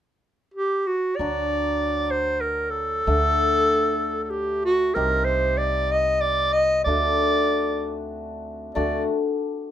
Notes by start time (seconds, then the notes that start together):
0.54 G4
0.87 F#4
1.16 D2 F#3 D5
1.20 D4 F#4
2.11 C5
2.41 A#4
2.71 A4
3.07 D2 A3 D4 F#5
4.23 A4
4.30 G4
4.65 F#4
4.94 C2 C4 D#4 G4 A#4
5.25 C5
5.58 D5
5.92 D#5
6.21 D5
6.53 D#5
6.84 D2 A3 D4 F#4 D5
8.75 D2 A3 D4 F#4 D5